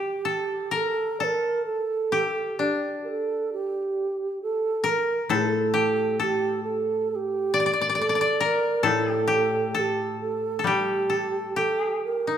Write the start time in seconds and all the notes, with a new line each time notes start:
Already playing: G3 G4
0.25 A4
0.71 A4 A#4
1.20 A4 A#4 D5
1.66 A4
2.12 G4
2.58 D4 G4
3.04 A#4
3.08 A4
3.53 G4
4.43 A4
4.84 A#4
5.29 A2 G#4 A4
5.47 A4
5.74 G4
6.20 G4 A4
6.64 A4
7.11 A4
7.16 G4
7.54 D5
7.60 D5
7.66 D5
7.73 D5
7.81 D5
7.89 D5
7.95 A4 D5
8.01 D5
8.09 D5
8.15 D5
8.21 D5
8.40 A#4
8.83 A2 A4
9.11 G4
9.28 G4
9.75 A4
9.79 G4
10.21 A4
10.59 A4
10.64 G3 G4
11.10 A4
11.56 G4 A4
12.04 A#4
12.27 D#4